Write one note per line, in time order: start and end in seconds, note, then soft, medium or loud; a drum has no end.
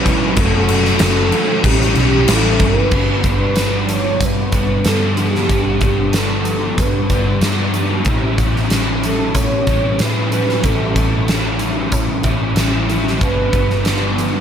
0.00 0.34 A1 loud
0.00 0.36 E3 medium
0.00 0.37 G3 medium
0.00 0.37 C#4 medium
0.00 0.38 E4 medium
0.00 0.42 B4 medium
0.06 kick medium
0.06 crash medium
0.36 0.97 F#1 medium
0.36 0.99 F#3 medium
0.36 1.01 A3 loud
0.36 1.02 C#4 loud
0.36 1.02 F#4 loud
0.36 kick loud
0.36 crash medium
0.41 1.02 A4 loud
0.68 crash medium
0.85 snare soft
0.99 1.31 F#1 loud
0.99 1.63 F#3 medium
0.99 1.35 A3 medium
0.99 1.33 C#4 medium
0.99 1.68 A4 loud
0.99 snare loud
0.99 crash medium
1.04 1.31 F#4 medium
1.32 1.65 A3 medium
1.32 1.64 C#4 medium
1.32 1.63 F#4 medium
1.32 crash medium
1.63 1.95 A1 loud
1.63 2.28 A2 loud
1.63 2.26 E3 loud
1.63 1.97 G3 loud
1.63 1.96 C#4 loud
1.63 1.94 E4 loud
1.63 1.97 G4 medium
1.63 kick loud
1.63 crash loud
1.81 snare soft
1.95 2.26 B1 medium
1.95 2.27 G3 medium
1.95 2.28 C#4 medium
1.95 2.29 E4 medium
1.95 crash medium
2.03 2.35 G4 medium
2.27 2.57 A1 medium
2.27 2.90 E3 medium
2.27 2.91 G3 medium
2.27 2.91 C#4 medium
2.27 2.92 E4 loud
2.27 snare loud
2.27 crash medium
2.34 2.68 A4 loud
2.59 2.89 G1 medium
2.59 kick medium
2.59 crash medium
2.66 3.28 B4 loud
2.91 3.23 G1 medium
2.91 5.48 G2 medium
2.91 3.56 D3 loud
2.91 3.27 G3 medium
2.91 3.25 B3 loud
2.91 3.23 D4 medium
2.91 kick loud
2.91 crash medium
3.24 4.22 G1 medium
3.24 3.58 G3 medium
3.24 3.59 B3 medium
3.24 3.60 D4 medium
3.24 kick medium
3.24 closed hi-hat medium
3.29 3.94 B4 loud
3.56 4.83 D3 medium
3.56 4.55 G3 medium
3.56 4.53 B3 medium
3.56 snare loud
3.56 closed hi-hat medium
3.60 4.52 D4 medium
3.89 closed hi-hat medium
3.93 4.26 C#5 loud
4.20 4.51 G2 medium
4.20 kick medium
4.20 closed hi-hat loud
4.25 4.87 B4 loud
4.52 4.83 G1 medium
4.52 4.85 G3 medium
4.52 4.85 B3 medium
4.52 4.88 D4 medium
4.52 kick medium
4.52 closed hi-hat medium
4.85 5.46 G2 medium
4.85 5.48 D3 medium
4.85 5.19 G3 medium
4.85 5.17 B3 medium
4.85 5.16 D4 medium
4.85 5.21 A4 loud
4.85 snare loud
4.85 closed hi-hat medium
5.16 5.50 G3 medium
5.16 5.50 B3 medium
5.16 5.51 D4 medium
5.16 5.83 G4 loud
5.16 closed hi-hat medium
5.35 snare soft
5.48 5.80 G1 loud
5.48 6.13 G2 loud
5.48 6.11 D3 medium
5.48 5.84 G3 medium
5.48 5.81 B3 loud
5.48 5.80 D4 medium
5.48 kick loud
5.48 closed hi-hat medium
5.81 6.79 G1 medium
5.81 6.14 G3 medium
5.81 6.14 B3 medium
5.81 6.16 D4 medium
5.81 6.17 G4 medium
5.81 kick medium
5.81 closed hi-hat medium
6.13 7.41 D3 medium
6.13 7.13 G3 medium
6.13 7.10 B3 medium
6.13 7.09 D4 medium
6.13 6.83 A4 loud
6.13 snare loud
6.13 closed hi-hat medium
6.45 closed hi-hat medium
6.78 7.08 G2 loud
6.78 7.76 B4 medium
6.78 kick loud
6.78 closed hi-hat medium
7.10 7.41 G1 medium
7.10 7.44 G3 medium
7.10 7.44 B3 medium
7.10 7.46 D4 medium
7.10 kick medium
7.10 closed hi-hat medium
7.41 8.02 G2 medium
7.41 8.05 D3 medium
7.41 7.78 G3 medium
7.41 7.75 B3 medium
7.41 snare loud
7.41 closed hi-hat medium
7.46 7.74 D4 medium
7.74 8.06 B3 medium
7.74 8.10 D4 medium
7.74 closed hi-hat medium
7.78 8.08 G3 medium
8.05 8.36 A1 loud
8.05 8.75 A2 medium
8.05 8.70 E3 medium
8.05 8.41 G3 medium
8.05 kick loud
8.05 closed hi-hat medium
8.09 8.39 C#4 loud
8.09 8.38 E4 loud
8.38 9.35 A1 medium
8.38 8.71 G3 medium
8.38 8.72 C#4 medium
8.38 8.74 E4 medium
8.38 kick medium
8.38 closed hi-hat medium
8.56 snare soft
8.70 9.98 E3 medium
8.70 9.70 G3 medium
8.70 9.68 C#4 medium
8.70 9.66 E4 medium
8.70 snare loud
8.70 closed hi-hat medium
9.03 9.36 A4 medium
9.03 closed hi-hat medium
9.35 9.65 A2 medium
9.35 10.02 C#5 loud
9.35 kick medium
9.35 closed hi-hat medium
9.67 9.98 A1 medium
9.67 10.00 G3 medium
9.67 10.01 C#4 medium
9.67 10.02 E4 medium
9.67 kick medium
9.67 closed hi-hat medium
9.99 10.60 A2 medium
9.99 10.64 E3 medium
9.99 10.35 G3 medium
9.99 10.33 C#4 medium
9.99 10.31 E4 loud
9.99 10.32 B4 loud
9.99 snare loud
9.99 closed hi-hat medium
10.32 10.65 G3 medium
10.32 10.66 C#4 medium
10.32 10.66 E4 medium
10.32 10.66 B4 medium
10.32 closed hi-hat medium
10.49 snare soft
10.63 10.94 A1 medium
10.63 11.29 A2 medium
10.63 11.27 E3 medium
10.63 10.98 G3 medium
10.63 10.96 C#4 medium
10.63 11.61 A4 medium
10.63 kick loud
10.63 closed hi-hat medium
10.67 10.94 E4 loud
10.95 11.92 A1 medium
10.95 11.29 G3 medium
10.95 11.29 C#4 medium
10.95 11.30 E4 medium
10.95 kick medium
10.95 closed hi-hat medium
11.28 12.55 E3 medium
11.28 12.27 G3 medium
11.28 12.25 C#4 medium
11.28 12.23 E4 medium
11.28 snare loud
11.28 closed hi-hat medium
11.59 closed hi-hat medium
11.92 12.23 A2 medium
11.92 kick medium
11.92 closed hi-hat loud
12.23 12.55 A1 medium
12.23 12.57 G3 medium
12.23 12.57 C#4 medium
12.23 12.58 E4 medium
12.23 kick medium
12.23 closed hi-hat medium
12.56 13.17 A1 medium
12.56 13.19 E3 medium
12.56 12.92 G3 medium
12.56 12.90 C#4 medium
12.56 12.88 E4 medium
12.56 snare loud
12.56 closed hi-hat medium
12.89 13.22 G3 medium
12.89 13.20 C#4 medium
12.89 13.19 E4 medium
12.89 closed hi-hat medium
13.07 snare soft
13.21 13.52 G1 medium
13.21 14.40 G2 medium
13.21 13.83 D3 medium
13.21 13.56 G3 medium
13.21 13.54 B3 medium
13.21 13.52 D4 loud
13.21 14.15 B4 loud
13.21 kick loud
13.21 closed hi-hat medium
13.52 14.40 G1 medium
13.52 13.85 G3 medium
13.52 13.87 B3 medium
13.52 13.87 D4 medium
13.52 kick medium
13.52 closed hi-hat medium
13.70 snare soft
13.84 14.40 D3 medium
13.84 14.40 G3 medium
13.84 14.40 B3 medium
13.84 14.40 D4 medium
13.84 snare loud
13.84 closed hi-hat medium
14.18 closed hi-hat medium